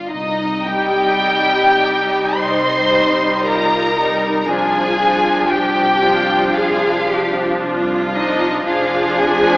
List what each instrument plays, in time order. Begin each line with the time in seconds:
Already playing: violin section F4
0.10 double bass section C2, violin section D#4 D#5
0.65 viola section G3 D#4, violin section G4 G5
1.20 double bass section C2
1.79 viola section G3 D#4
2.37 double bass section C2, cello section D#4, violin section C5 C6
2.92 viola section G3 D#4
3.44 double bass section C2, cello section F4, violin section A#4 A#5
3.97 viola section G3 D#4, cello section D#4
4.41 violin section A#5
4.47 double bass section C2, viola section F3 D4, cello section F4, violin section G#4 G#5
5.00 viola section F3 D4
5.50 double bass section C2, violin section G4 G5, cello section G4
6.02 viola section F3 D4, cello section F4
6.55 double bass section C2, violin section F4 F5, cello section G#4
7.08 viola section F3 D4, cello section G4
7.61 double bass section C2, cello section F4
8.13 viola section F3 D4, violin section D#4 D#5
8.65 double bass section F1, viola section F3 D4, violin section F4 F5, cello section G#4
9.18 violin section G#4 G#5